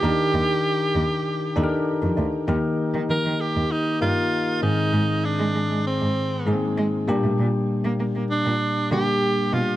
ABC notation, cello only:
X:1
M:4/4
L:1/16
Q:1/4=98
K:Eb
V:1 name="Cello" clef=bass
E,,2 E,,2 z2 E,,2 z2 E,,3 F,, D,,2 | E,,2 z E, E, E, z E,, z2 G,,2 z2 A,,2 | A,,2 z A, A, A, z A,,2 z A,,2 A, z B,, =A,, | B,,2 z B, B, B, z B,, z2 D,2 z2 _C,2 |]